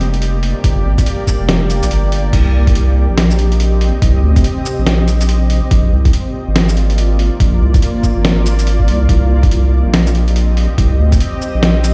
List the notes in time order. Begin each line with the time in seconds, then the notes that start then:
Already playing: F1 A#3 G4 D5
0.01 closed hi-hat
0.14 closed hi-hat
0.22 closed hi-hat
0.43 open hi-hat
0.64 G1, kick, closed hi-hat
0.85 G#1
0.98 kick, closed hi-hat, shaker
1.06 closed hi-hat
1.27 kick, shaker
1.40 F1
1.49 snare, closed hi-hat
1.70 closed hi-hat, shaker
1.83 A#1, closed hi-hat, shaker
1.91 G1, closed hi-hat
2.12 open hi-hat
2.33 C2 C4 D#5, kick, closed hi-hat, crash
2.67 kick, closed hi-hat
2.75 closed hi-hat
3.10 A#1
3.18 snare, closed hi-hat
3.31 shaker
3.39 closed hi-hat
3.52 closed hi-hat
3.60 closed hi-hat
3.81 open hi-hat
4.02 C2, kick, closed hi-hat
4.23 D2
4.36 kick, closed hi-hat, shaker
4.44 closed hi-hat
4.65 shaker
4.79 A#1
4.87 snare, closed hi-hat
5.08 closed hi-hat, shaker
5.21 closed hi-hat, shaker
5.29 closed hi-hat
5.50 open hi-hat
5.71 A#1 A#3 F4 D5, kick, closed hi-hat
5.93 C2
6.05 kick, closed hi-hat
6.13 closed hi-hat
6.48 G#1
6.56 snare, closed hi-hat
6.69 shaker
6.77 closed hi-hat
6.90 closed hi-hat
6.98 closed hi-hat
7.19 open hi-hat
7.40 A#1, kick, closed hi-hat
7.62 C2
7.74 kick, closed hi-hat, shaker
7.82 closed hi-hat
8.03 kick, shaker
8.17 G#1
8.25 snare, closed hi-hat
8.46 closed hi-hat, shaker
8.59 closed hi-hat, shaker
8.67 closed hi-hat
8.80 kick
8.88 C2, open hi-hat
9.09 C2 C4 G4 D#5, kick, closed hi-hat
9.43 kick, closed hi-hat
9.51 closed hi-hat
9.85 A#1
9.94 snare, closed hi-hat
10.07 shaker
10.15 closed hi-hat
10.28 closed hi-hat
10.36 closed hi-hat
10.57 open hi-hat
10.78 C2, kick, closed hi-hat
10.99 D2
11.12 kick, closed hi-hat, shaker
11.20 closed hi-hat
11.42 shaker
11.55 A#1
11.63 snare, closed hi-hat
11.84 closed hi-hat, shaker